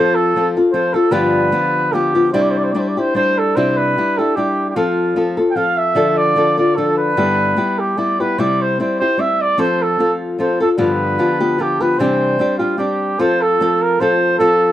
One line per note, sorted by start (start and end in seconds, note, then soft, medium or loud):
0.00 0.36 F3 medium
0.00 0.34 C4 medium
0.00 0.37 F4 medium
0.00 0.35 A4 medium
0.00 0.16 C5 medium
0.15 0.48 A4 medium
0.36 0.56 F3 medium
0.36 0.57 C4 soft
0.36 0.56 F4 medium
0.36 0.55 A4 medium
0.57 0.73 C4 soft
0.57 0.73 F4 soft
0.57 0.74 A4 soft
0.72 0.95 F3 medium
0.72 0.95 C4 medium
0.72 0.94 F4 medium
0.72 0.93 A4 soft
0.72 0.95 C5 medium
0.94 1.12 C4 soft
0.94 1.11 F4 soft
0.94 1.13 A4 medium
0.94 1.12 A4 soft
1.11 1.52 G2 medium
1.11 2.34 D3 medium
1.11 1.51 F3 medium
1.11 1.51 B3 medium
1.11 1.52 F4 medium
1.11 1.53 G4 medium
1.11 1.95 B4 medium
1.52 1.92 F3 medium
1.52 1.93 B3 medium
1.52 1.93 F4 medium
1.52 1.95 G4 medium
1.93 2.15 F3 soft
1.93 2.14 B3 medium
1.93 2.14 F4 soft
1.93 2.31 G4 medium
1.93 2.13 G4 medium
2.15 2.34 F3 soft
2.15 2.33 B3 soft
2.15 2.33 F4 soft
2.15 2.33 G4 soft
2.32 2.74 C3 medium
2.32 2.74 G3 medium
2.32 2.75 D4 medium
2.32 2.75 E4 medium
2.32 2.76 G4 medium
2.32 2.43 C5 medium
2.42 2.52 D5 medium
2.51 2.59 C5 medium
2.58 2.65 D5 medium
2.64 2.73 C5 medium
2.72 2.96 G3 medium
2.72 2.96 D4 medium
2.72 2.96 E4 medium
2.72 2.81 D5 medium
2.76 2.96 G4 medium
2.76 2.90 C5 soft
2.89 3.00 D5 medium
2.97 3.14 D4 soft
2.97 3.15 E4 soft
2.97 3.15 G4 soft
2.97 3.14 C5 medium
3.15 3.55 G3 soft
3.15 3.55 D4 soft
3.15 3.56 E4 soft
3.15 3.56 G4 medium
3.15 3.40 C5 medium
3.38 3.57 A4 medium
3.56 3.96 C3 medium
3.56 3.96 G3 medium
3.56 3.96 D4 medium
3.56 3.97 E4 medium
3.56 3.97 G4 medium
3.56 3.79 C5 medium
3.77 4.19 B4 medium
3.98 4.18 G3 soft
3.98 4.18 D4 soft
3.98 4.19 E4 medium
3.98 4.17 G4 medium
4.18 4.36 D4 soft
4.18 4.36 E4 soft
4.18 4.37 G4 soft
4.18 4.37 A4 medium
4.36 4.76 G3 soft
4.36 4.76 D4 soft
4.36 4.76 E4 soft
4.36 4.69 G4 medium
4.36 4.77 G4 soft
4.70 4.77 G4 medium
4.75 5.16 F3 medium
4.75 5.15 C4 medium
4.75 5.16 F4 medium
4.75 5.17 A4 medium
5.16 5.38 F3 medium
5.16 5.38 C4 soft
5.16 5.37 F4 soft
5.16 5.36 A4 medium
5.37 5.55 C4 soft
5.37 5.55 F4 soft
5.37 5.56 A4 soft
5.51 5.57 G5 medium
5.56 5.94 F3 soft
5.56 5.96 C4 soft
5.56 5.95 F4 medium
5.56 5.95 A4 soft
5.56 5.79 F5 medium
5.77 6.19 E5 medium
5.95 7.17 D3 medium
5.95 6.35 F3 medium
5.95 6.37 D4 medium
5.95 6.36 F4 medium
5.95 6.36 A4 medium
6.17 6.58 D5 medium
6.36 6.58 F3 medium
6.36 6.58 D4 medium
6.36 6.58 F4 medium
6.36 6.56 A4 medium
6.57 6.77 D4 soft
6.57 6.77 F4 soft
6.57 6.76 A4 soft
6.57 6.77 D5 medium
6.75 7.17 F3 soft
6.75 7.17 D4 medium
6.75 7.17 F4 medium
6.75 6.97 A4 medium
6.75 7.17 A4 soft
6.98 7.81 B4 medium
7.17 7.57 G2 medium
7.17 7.57 D3 medium
7.17 7.56 G3 medium
7.17 7.56 B3 medium
7.17 7.57 E4 medium
7.17 7.57 G4 medium
7.56 7.96 G3 medium
7.56 7.96 B3 medium
7.56 7.97 E4 medium
7.56 7.97 G4 medium
7.79 7.99 G4 medium
7.97 8.19 G3 soft
7.97 8.19 B3 soft
7.97 8.19 E4 medium
7.97 8.19 G4 soft
7.97 8.22 D5 medium
8.20 8.37 G3 soft
8.20 8.39 B3 soft
8.20 8.38 E4 soft
8.20 8.38 G4 soft
8.20 8.41 B4 medium
8.38 8.78 C3 medium
8.38 8.78 G3 medium
8.38 8.79 C4 medium
8.38 8.79 E4 medium
8.38 8.79 G4 medium
8.38 8.63 D5 medium
8.62 8.79 C5 medium
8.80 9.00 G3 soft
8.80 9.00 C4 medium
8.80 9.01 E4 soft
8.80 9.00 G4 medium
8.80 8.99 C5 medium
9.00 9.17 C4 soft
9.00 9.18 E4 soft
9.00 9.18 G4 soft
9.00 9.21 C5 medium
9.17 9.57 G3 soft
9.17 9.57 C4 soft
9.17 9.58 E4 medium
9.17 9.58 G4 soft
9.17 9.43 E5 medium
9.41 9.61 D5 medium
9.58 9.99 F3 medium
9.58 9.98 C4 medium
9.58 10.00 F4 medium
9.58 9.98 A4 medium
9.58 9.84 C5 medium
9.82 10.13 A4 medium
9.99 10.37 F3 soft
9.99 10.38 C4 medium
9.99 10.39 F4 medium
9.99 10.39 A4 medium
10.39 10.59 F3 soft
10.39 10.60 C4 soft
10.39 10.60 F4 medium
10.39 10.59 A4 medium
10.39 10.59 C5 medium
10.60 10.78 C4 soft
10.60 10.77 F4 soft
10.60 10.78 A4 soft
10.60 10.70 A4 medium
10.78 11.18 G2 medium
10.78 11.99 D3 medium
10.78 11.17 F3 medium
10.78 11.18 B3 medium
10.78 11.18 F4 medium
10.78 11.19 G4 medium
10.78 11.63 B4 medium
11.18 11.39 F3 medium
11.18 11.40 B3 medium
11.18 11.40 F4 medium
11.18 11.39 G4 medium
11.40 11.57 F3 soft
11.40 11.58 B3 soft
11.40 11.58 F4 soft
11.40 11.58 G4 medium
11.58 11.79 F3 medium
11.58 11.80 B3 soft
11.58 11.80 F4 soft
11.58 11.79 G4 medium
11.58 11.83 G4 medium
11.80 11.99 F3 soft
11.80 11.99 B3 soft
11.80 11.99 F4 soft
11.80 11.98 G4 soft
11.80 12.00 B4 medium
11.98 12.39 C3 medium
11.98 12.39 E3 medium
11.98 12.38 G3 medium
11.98 12.39 C4 medium
11.98 12.39 D4 medium
11.98 12.40 G4 medium
11.98 12.58 C5 medium
12.39 12.60 G3 soft
12.39 12.60 C4 medium
12.39 12.59 D4 medium
12.39 12.58 G4 medium
12.58 12.76 G3 soft
12.58 12.78 C4 soft
12.58 12.78 D4 soft
12.58 12.77 F4 medium
12.58 12.78 G4 soft
12.78 13.19 G3 soft
12.78 13.19 C4 soft
12.78 13.19 D4 medium
12.78 13.21 G4 medium
12.78 13.20 G4 medium
13.19 13.59 F3 medium
13.19 13.60 C4 medium
13.19 13.60 F4 medium
13.19 13.60 A4 medium
13.19 13.43 C5 medium
13.42 13.83 A4 medium
13.61 13.99 F3 medium
13.61 14.01 C4 medium
13.61 14.00 F4 medium
13.61 14.01 A4 medium
13.82 14.02 A#4 medium
14.00 14.39 F3 medium
14.00 14.40 C4 medium
14.00 14.39 F4 medium
14.00 14.40 A4 medium
14.00 14.38 C5 medium
14.39 14.72 F3 medium
14.39 14.72 C4 medium
14.39 14.72 F4 medium
14.39 14.72 A4 loud
14.39 14.72 A4 medium